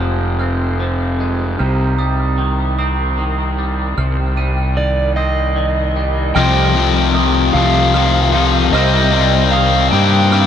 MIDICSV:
0, 0, Header, 1, 7, 480
1, 0, Start_track
1, 0, Key_signature, -3, "minor"
1, 0, Tempo, 793651
1, 965, Time_signature, 6, 3, 24, 8
1, 6329, End_track
2, 0, Start_track
2, 0, Title_t, "Glockenspiel"
2, 0, Program_c, 0, 9
2, 0, Note_on_c, 0, 89, 58
2, 232, Note_off_c, 0, 89, 0
2, 239, Note_on_c, 0, 89, 57
2, 722, Note_off_c, 0, 89, 0
2, 963, Note_on_c, 0, 89, 69
2, 1200, Note_on_c, 0, 87, 66
2, 1204, Note_off_c, 0, 89, 0
2, 1677, Note_off_c, 0, 87, 0
2, 1685, Note_on_c, 0, 87, 67
2, 2166, Note_off_c, 0, 87, 0
2, 2405, Note_on_c, 0, 89, 71
2, 2645, Note_on_c, 0, 99, 65
2, 2646, Note_off_c, 0, 89, 0
2, 3126, Note_off_c, 0, 99, 0
2, 3126, Note_on_c, 0, 87, 68
2, 3606, Note_off_c, 0, 87, 0
2, 3845, Note_on_c, 0, 89, 100
2, 4322, Note_on_c, 0, 87, 82
2, 4325, Note_off_c, 0, 89, 0
2, 4803, Note_on_c, 0, 89, 81
2, 4804, Note_off_c, 0, 87, 0
2, 5281, Note_off_c, 0, 89, 0
2, 5288, Note_on_c, 0, 89, 100
2, 5766, Note_off_c, 0, 89, 0
2, 5766, Note_on_c, 0, 87, 82
2, 6243, Note_on_c, 0, 89, 92
2, 6245, Note_off_c, 0, 87, 0
2, 6329, Note_off_c, 0, 89, 0
2, 6329, End_track
3, 0, Start_track
3, 0, Title_t, "Electric slide guitar"
3, 0, Program_c, 1, 29
3, 2885, Note_on_c, 1, 74, 61
3, 3118, Note_off_c, 1, 74, 0
3, 3121, Note_on_c, 1, 75, 58
3, 3837, Note_off_c, 1, 75, 0
3, 3839, Note_on_c, 1, 79, 91
3, 4555, Note_off_c, 1, 79, 0
3, 4558, Note_on_c, 1, 77, 93
3, 5276, Note_off_c, 1, 77, 0
3, 5278, Note_on_c, 1, 75, 101
3, 5750, Note_off_c, 1, 75, 0
3, 5753, Note_on_c, 1, 77, 93
3, 5991, Note_off_c, 1, 77, 0
3, 5994, Note_on_c, 1, 79, 96
3, 6329, Note_off_c, 1, 79, 0
3, 6329, End_track
4, 0, Start_track
4, 0, Title_t, "Pedal steel guitar"
4, 0, Program_c, 2, 26
4, 0, Note_on_c, 2, 65, 48
4, 0, Note_on_c, 2, 68, 42
4, 0, Note_on_c, 2, 72, 46
4, 0, Note_on_c, 2, 79, 49
4, 943, Note_off_c, 2, 68, 0
4, 953, Note_off_c, 2, 72, 0
4, 954, Note_off_c, 2, 65, 0
4, 962, Note_on_c, 2, 67, 41
4, 964, Note_on_c, 2, 63, 47
4, 970, Note_on_c, 2, 72, 48
4, 2392, Note_off_c, 2, 72, 0
4, 2415, Note_on_c, 2, 72, 43
4, 3822, Note_off_c, 2, 63, 0
4, 3822, Note_off_c, 2, 67, 0
4, 3826, Note_off_c, 2, 79, 0
4, 3836, Note_off_c, 2, 72, 0
4, 3846, Note_on_c, 2, 69, 57
4, 3847, Note_on_c, 2, 65, 69
4, 3849, Note_on_c, 2, 75, 73
4, 5271, Note_off_c, 2, 65, 0
4, 5271, Note_off_c, 2, 69, 0
4, 5272, Note_off_c, 2, 75, 0
4, 5278, Note_on_c, 2, 67, 59
4, 5280, Note_on_c, 2, 60, 72
4, 5281, Note_on_c, 2, 75, 80
4, 5283, Note_on_c, 2, 70, 57
4, 6329, Note_off_c, 2, 60, 0
4, 6329, Note_off_c, 2, 67, 0
4, 6329, Note_off_c, 2, 70, 0
4, 6329, Note_off_c, 2, 75, 0
4, 6329, End_track
5, 0, Start_track
5, 0, Title_t, "Clean electric guitar"
5, 0, Program_c, 3, 27
5, 0, Note_on_c, 3, 41, 57
5, 0, Note_on_c, 3, 56, 54
5, 1, Note_on_c, 3, 53, 59
5, 245, Note_on_c, 3, 60, 54
5, 477, Note_off_c, 3, 53, 0
5, 484, Note_on_c, 3, 53, 55
5, 720, Note_off_c, 3, 56, 0
5, 724, Note_off_c, 3, 41, 0
5, 727, Note_on_c, 3, 56, 55
5, 965, Note_off_c, 3, 53, 0
5, 966, Note_off_c, 3, 56, 0
5, 966, Note_on_c, 3, 48, 58
5, 1202, Note_on_c, 3, 55, 52
5, 1439, Note_on_c, 3, 51, 57
5, 1683, Note_off_c, 3, 60, 0
5, 1685, Note_on_c, 3, 60, 63
5, 1916, Note_off_c, 3, 51, 0
5, 1923, Note_on_c, 3, 51, 56
5, 2161, Note_off_c, 3, 55, 0
5, 2168, Note_on_c, 3, 55, 51
5, 2406, Note_off_c, 3, 48, 0
5, 2408, Note_on_c, 3, 48, 62
5, 2636, Note_off_c, 3, 55, 0
5, 2644, Note_on_c, 3, 55, 54
5, 2876, Note_off_c, 3, 51, 0
5, 2883, Note_on_c, 3, 51, 58
5, 2886, Note_off_c, 3, 60, 0
5, 3123, Note_on_c, 3, 60, 61
5, 3355, Note_off_c, 3, 51, 0
5, 3363, Note_on_c, 3, 51, 60
5, 3599, Note_off_c, 3, 55, 0
5, 3606, Note_on_c, 3, 55, 57
5, 3607, Note_off_c, 3, 48, 0
5, 3844, Note_off_c, 3, 51, 0
5, 3844, Note_on_c, 3, 48, 84
5, 3845, Note_off_c, 3, 60, 0
5, 3846, Note_off_c, 3, 55, 0
5, 4324, Note_on_c, 3, 51, 72
5, 4565, Note_on_c, 3, 57, 89
5, 4798, Note_off_c, 3, 51, 0
5, 4805, Note_on_c, 3, 51, 85
5, 5038, Note_on_c, 3, 63, 78
5, 5277, Note_off_c, 3, 48, 0
5, 5279, Note_on_c, 3, 48, 89
5, 5285, Note_off_c, 3, 51, 0
5, 5285, Note_off_c, 3, 57, 0
5, 5761, Note_on_c, 3, 51, 80
5, 6002, Note_on_c, 3, 58, 88
5, 6240, Note_off_c, 3, 51, 0
5, 6248, Note_on_c, 3, 51, 78
5, 6329, Note_off_c, 3, 48, 0
5, 6329, Note_off_c, 3, 51, 0
5, 6329, Note_off_c, 3, 58, 0
5, 6329, Note_off_c, 3, 63, 0
5, 6329, End_track
6, 0, Start_track
6, 0, Title_t, "Distorted electric guitar"
6, 0, Program_c, 4, 30
6, 3847, Note_on_c, 4, 41, 93
6, 3849, Note_on_c, 4, 48, 113
6, 3854, Note_on_c, 4, 53, 102
6, 4076, Note_off_c, 4, 41, 0
6, 4083, Note_on_c, 4, 41, 93
6, 4084, Note_off_c, 4, 53, 0
6, 4087, Note_off_c, 4, 48, 0
6, 4089, Note_on_c, 4, 48, 102
6, 4091, Note_on_c, 4, 53, 105
6, 4559, Note_off_c, 4, 41, 0
6, 4566, Note_off_c, 4, 53, 0
6, 4566, Note_on_c, 4, 41, 101
6, 4567, Note_off_c, 4, 48, 0
6, 4570, Note_on_c, 4, 48, 111
6, 4574, Note_on_c, 4, 53, 124
6, 4794, Note_off_c, 4, 41, 0
6, 4802, Note_on_c, 4, 41, 79
6, 4803, Note_off_c, 4, 53, 0
6, 4807, Note_off_c, 4, 48, 0
6, 4809, Note_on_c, 4, 48, 83
6, 4810, Note_on_c, 4, 53, 94
6, 5039, Note_off_c, 4, 41, 0
6, 5046, Note_off_c, 4, 53, 0
6, 5046, Note_on_c, 4, 41, 93
6, 5048, Note_off_c, 4, 48, 0
6, 5051, Note_on_c, 4, 48, 98
6, 5054, Note_on_c, 4, 53, 99
6, 5271, Note_off_c, 4, 41, 0
6, 5275, Note_off_c, 4, 53, 0
6, 5279, Note_off_c, 4, 48, 0
6, 5281, Note_on_c, 4, 48, 99
6, 5287, Note_on_c, 4, 55, 113
6, 5288, Note_on_c, 4, 60, 113
6, 5519, Note_off_c, 4, 48, 0
6, 5521, Note_off_c, 4, 55, 0
6, 5522, Note_on_c, 4, 48, 102
6, 5524, Note_on_c, 4, 55, 102
6, 5526, Note_off_c, 4, 60, 0
6, 5528, Note_on_c, 4, 60, 98
6, 6000, Note_off_c, 4, 48, 0
6, 6003, Note_off_c, 4, 55, 0
6, 6003, Note_on_c, 4, 48, 112
6, 6005, Note_on_c, 4, 55, 117
6, 6006, Note_off_c, 4, 60, 0
6, 6009, Note_on_c, 4, 60, 110
6, 6240, Note_off_c, 4, 48, 0
6, 6243, Note_on_c, 4, 48, 91
6, 6247, Note_off_c, 4, 55, 0
6, 6248, Note_off_c, 4, 60, 0
6, 6249, Note_on_c, 4, 55, 96
6, 6250, Note_on_c, 4, 60, 97
6, 6329, Note_off_c, 4, 48, 0
6, 6329, Note_off_c, 4, 55, 0
6, 6329, Note_off_c, 4, 60, 0
6, 6329, End_track
7, 0, Start_track
7, 0, Title_t, "Fingered electric bass"
7, 0, Program_c, 5, 33
7, 0, Note_on_c, 5, 29, 62
7, 940, Note_off_c, 5, 29, 0
7, 968, Note_on_c, 5, 36, 72
7, 2384, Note_off_c, 5, 36, 0
7, 2405, Note_on_c, 5, 36, 74
7, 3821, Note_off_c, 5, 36, 0
7, 3846, Note_on_c, 5, 36, 98
7, 4541, Note_off_c, 5, 36, 0
7, 4563, Note_on_c, 5, 36, 96
7, 5260, Note_off_c, 5, 36, 0
7, 5279, Note_on_c, 5, 36, 108
7, 5977, Note_off_c, 5, 36, 0
7, 6004, Note_on_c, 5, 43, 103
7, 6329, Note_off_c, 5, 43, 0
7, 6329, End_track
0, 0, End_of_file